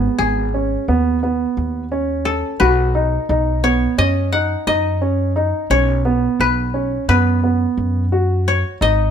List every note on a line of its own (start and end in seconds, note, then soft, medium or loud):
0.00 0.45 B3 medium
0.00 0.18 G#4 medium
0.00 0.12 C#5 medium
0.18 0.76 G#1 medium
0.18 2.16 G#4 medium
0.54 0.84 C#4 medium
0.88 1.44 D#2 medium
0.88 1.18 B3 medium
1.23 1.82 B3 medium
1.57 2.41 D#2 medium
1.92 2.51 C#4 medium
2.25 4.16 A4 medium
2.60 3.17 B1 medium
2.60 2.90 F#4 medium
2.60 4.37 B4 medium
2.95 3.25 D#4 medium
3.29 3.86 B1 loud
3.29 3.59 D#4 medium
3.64 3.94 B3 medium
3.64 5.29 C#5 medium
3.98 4.54 F#2 medium
3.98 4.28 C#4 medium
3.98 4.67 D#5 medium
4.32 4.63 D#4 medium
4.32 5.72 F#5 medium
4.67 5.51 F#2 medium
4.67 4.97 D#4 medium
4.67 6.22 D#5 medium
5.01 5.31 C#4 medium
5.36 5.66 D#4 medium
5.70 6.26 B1 medium
5.70 6.01 C#4 medium
5.70 7.36 C#5 medium
6.05 6.65 B3 medium
6.40 6.96 B1 medium
6.40 7.08 B4 medium
6.74 7.04 C#4 medium
7.08 7.65 F#2 medium
7.08 7.39 B3 medium
7.08 8.86 B4 medium
7.44 8.03 B3 medium
7.78 8.62 F#2 medium
8.12 8.72 F#4 medium
8.48 9.11 C#5 medium
8.81 9.11 G#1 medium
8.81 9.11 D#4 medium
8.81 9.11 D#5 medium